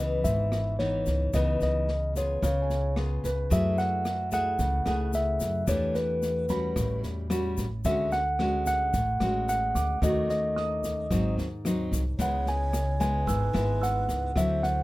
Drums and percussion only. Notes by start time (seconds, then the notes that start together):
0.24 kick, snare, shaker
0.52 cross-stick, snare, shaker
0.79 snare
1.06 kick, snare, shaker
1.33 kick, cross-stick, snare, shaker
1.60 snare, shaker
1.88 snare
2.15 kick, snare, shaker
2.43 kick, cross-stick, snare, shaker
2.70 snare, shaker
2.96 cross-stick, snare
3.24 kick, snare, shaker
3.51 kick, snare, shaker
3.78 snare, shaker
4.05 cross-stick, snare, shaker
4.31 kick, snare, shaker
4.59 kick, snare, shaker
4.86 cross-stick, snare, shaker
5.13 snare, shaker
5.40 kick, snare, shaker
5.67 kick, cross-stick, snare, shaker
5.95 snare, shaker
6.22 snare, shaker
6.49 kick, snare, shaker
6.76 kick, cross-stick, snare, shaker
7.03 snare, shaker
7.30 cross-stick, snare, shaker
7.57 kick, snare, shaker
7.84 kick, snare, shaker
8.12 snare, shaker
8.39 cross-stick, snare
8.66 kick, snare, shaker
8.93 kick, snare, shaker
9.20 cross-stick, snare, shaker
9.48 snare, shaker
9.75 kick, snare, shaker
10.02 kick, cross-stick, snare, shaker
10.29 snare, shaker
10.57 snare
10.84 kick, snare, shaker
11.11 kick, cross-stick, snare, shaker
11.38 snare, shaker
11.65 cross-stick, snare, shaker
11.92 kick, snare, shaker
12.19 kick, snare, shaker
12.46 snare, shaker
12.73 cross-stick, snare, shaker
13.00 kick, snare, shaker
13.27 kick, snare, shaker
13.54 cross-stick, snare, shaker
13.82 snare, shaker
14.09 kick, snare, shaker
14.36 kick, cross-stick, snare, shaker
14.63 snare, shaker